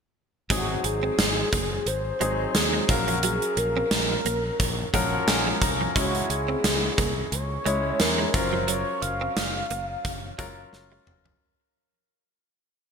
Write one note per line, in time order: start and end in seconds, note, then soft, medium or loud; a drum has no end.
0.50 0.75 G#1 medium
0.50 1.47 F#3 medium
0.50 0.64 G#3 medium
0.50 1.47 C4 medium
0.50 1.47 D#4 medium
0.50 0.86 F#4 medium
0.50 1.47 G#4 medium
0.50 kick loud
0.50 closed hi-hat medium
0.84 1.09 G#1 loud
0.84 1.89 G#4 loud
0.84 muted clean electric guitar stroke soft
0.84 closed hi-hat medium
1.03 1.14 C4 medium
1.18 1.43 G#1 medium
1.18 snare loud
1.18 closed hi-hat medium
1.53 1.77 F#1 medium
1.53 1.66 A#3 medium
1.53 kick medium
1.53 closed hi-hat medium
1.86 2.11 G#1 medium
1.86 2.57 C5 loud
1.86 closed hi-hat medium
2.20 2.45 G#1 medium
2.20 2.87 F#3 medium
2.20 2.34 G#3 medium
2.20 2.89 C4 medium
2.20 2.89 D#4 medium
2.20 2.89 G#4 medium
2.20 closed hi-hat medium
2.55 2.79 D#2 medium
2.55 2.91 G#4 medium
2.55 snare loud
2.55 closed hi-hat medium
2.73 2.85 G#3 medium
2.89 3.38 A#1 medium
2.89 3.99 F#3 medium
2.89 3.99 C#4 medium
2.89 3.26 F#4 medium
2.89 3.99 A#4 medium
2.89 3.99 F5 medium
2.89 muted clean electric guitar stroke soft
2.89 kick loud
2.89 closed hi-hat medium
3.08 3.19 F3 medium
3.08 closed hi-hat soft
3.23 3.37 F#3 medium
3.23 3.60 G#4 loud
3.23 closed hi-hat loud
3.42 closed hi-hat medium
3.57 3.81 A#1 loud
3.57 4.94 A#4 loud
3.57 muted clean electric guitar stroke soft
3.57 closed hi-hat medium
3.77 3.87 C4 medium
3.91 4.16 A#1 medium
3.91 snare loud
3.91 closed hi-hat medium
4.25 4.50 A#1 medium
4.25 4.39 A#3 medium
4.25 closed hi-hat medium
4.60 4.84 A#1 loud
4.60 kick medium
4.60 closed hi-hat medium
4.93 5.18 A#1 medium
4.93 5.66 F3 medium
4.93 5.66 F#3 medium
4.93 5.07 G#3 medium
4.93 5.66 C#4 medium
4.93 5.66 A#4 medium
4.93 5.25 F#5 medium
4.93 kick medium
4.93 closed hi-hat medium
5.27 5.52 A#1 medium
5.27 5.59 G#5 medium
5.27 snare loud
5.27 closed hi-hat medium
5.47 5.58 G#3 medium
5.62 5.86 C2 medium
5.62 5.93 A#5 medium
5.62 muted clean electric guitar stroke soft
5.62 kick medium
5.62 closed hi-hat medium
5.81 5.92 F3 medium
5.95 6.20 C#2 loud
5.95 6.92 G#3 medium
5.95 6.92 C#4 medium
5.95 6.10 C#4 medium
5.95 6.92 E4 medium
5.95 6.32 F#4 medium
5.95 6.93 C#5 medium
5.95 kick loud
5.95 closed hi-hat medium
6.15 closed hi-hat soft
6.29 6.54 C#2 medium
6.29 7.34 G#4 loud
6.29 muted clean electric guitar stroke soft
6.29 closed hi-hat medium
6.48 6.60 C4 medium
6.64 6.88 C#2 loud
6.64 snare loud
6.64 closed hi-hat medium
6.98 7.22 C2 medium
6.98 7.12 A#3 medium
6.98 kick medium
6.98 closed hi-hat medium
7.32 7.56 C#2 loud
7.32 8.01 C#5 loud
7.32 closed hi-hat medium
7.65 7.90 C#2 medium
7.65 8.34 G#3 medium
7.65 7.79 G#3 medium
7.65 8.32 C#4 medium
7.65 8.34 E4 medium
7.65 8.34 C#5 medium
7.65 closed hi-hat medium
8.00 8.25 E2 medium
8.00 8.36 A#4 medium
8.00 snare loud
8.00 closed hi-hat medium
8.18 8.30 G#3 medium
8.34 8.83 F#1 loud
8.34 9.44 F#3 medium
8.34 9.44 C#4 medium
8.34 9.44 F4 medium
8.34 9.44 A#4 medium
8.34 8.67 C5 medium
8.34 muted clean electric guitar stroke soft
8.34 kick loud
8.34 closed hi-hat medium
8.53 8.64 F3 medium
8.68 8.82 F#3 medium
8.68 9.03 C#5 loud
8.68 closed hi-hat medium
9.02 9.27 F#1 loud
9.02 10.38 F5 loud
9.02 muted clean electric guitar stroke soft
9.02 closed hi-hat medium
9.21 9.32 C4 medium
9.36 9.61 F#1 loud
9.36 snare loud
9.36 closed hi-hat medium
9.70 9.95 F#1 medium
9.70 9.84 A#3 medium
9.70 closed hi-hat medium
10.05 10.29 F#1 medium
10.05 kick medium
10.05 closed hi-hat medium
10.38 10.63 F#1 loud
10.38 11.11 F#3 medium
10.38 10.52 G#3 medium
10.38 11.11 C#4 medium
10.38 11.11 F4 medium
10.38 11.11 A#4 medium
10.38 kick medium
10.38 closed hi-hat medium
10.73 10.98 F#1 medium
10.73 snare medium
10.92 11.03 G#3 medium
11.07 11.31 F1 medium
11.07 muted clean electric guitar stroke soft
11.07 mid tom medium
11.25 11.37 F3 medium
11.25 floor tom medium